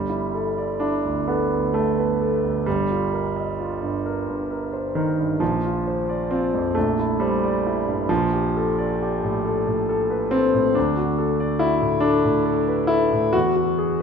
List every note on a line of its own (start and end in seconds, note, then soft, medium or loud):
0.00 2.62 G1 soft
0.00 0.81 G3 soft
0.09 0.48 E4 soft
0.34 0.73 A4 soft
0.58 0.96 D5 soft
0.80 1.28 D4 medium
0.80 1.19 E4 soft
1.05 1.43 D2 soft
1.28 1.74 B3 medium
1.28 1.66 A4 soft
1.53 1.89 D2 soft
1.74 2.66 A3 medium
1.74 2.11 A4 soft
1.98 2.20 B4 soft
2.22 2.58 A4 soft
2.44 2.67 D2 soft
2.66 5.38 G1 soft
2.66 4.95 G3 medium
2.90 3.27 F4 soft
3.13 3.49 A#4 soft
3.37 3.73 D#5 soft
3.60 3.96 F4 soft
3.83 4.19 G2 soft
4.06 4.41 A#4 soft
4.28 4.64 G2 soft
4.51 4.87 A#4 soft
4.73 4.96 C5 soft
4.95 5.41 D#3 medium
4.95 5.32 A#4 soft
5.20 5.42 G2 soft
5.40 6.72 A#1 soft
5.40 6.31 F3 medium
5.65 6.01 F4 soft
5.87 6.23 C5 soft
6.09 6.45 D5 soft
6.31 6.76 C4 medium
6.31 6.67 F4 soft
6.54 6.76 F2 soft
6.75 8.06 A#1 soft
6.75 7.20 A3 medium
6.99 7.34 E4 soft
7.20 8.10 G3 medium
7.20 7.56 C5 soft
7.44 7.79 D5 soft
7.66 8.02 E4 soft
7.87 8.10 G2 soft
8.09 10.72 A#1 soft
8.09 10.32 F3 medium
8.33 8.69 G4 soft
8.57 8.92 A4 soft
8.79 9.14 D5 soft
9.02 9.37 G4 soft
9.24 9.58 A2 soft
9.45 9.80 A4 soft
9.67 10.02 A2 soft
9.89 10.24 A4 soft
10.10 10.32 B4 soft
10.31 10.75 C4 medium
10.31 10.67 A4 soft
10.54 10.76 A2 soft
10.75 13.31 D2 soft
10.75 11.61 D4 medium
10.97 11.31 F#4 soft
11.18 11.53 A4 soft
11.40 11.74 D5 soft
11.59 12.03 E4 medium
11.59 11.95 F#4 soft
11.81 12.16 A2 soft
12.00 12.89 D4 medium
12.00 12.38 A4 soft
12.24 12.60 A2 soft
12.46 12.81 A4 soft
12.67 12.90 B4 soft
12.87 13.33 E4 medium
12.87 13.25 A4 soft
13.12 13.34 A2 soft
13.33 14.02 E2 soft
13.33 13.55 F#4 medium
13.56 13.91 F#4 soft
13.78 14.02 G#4 soft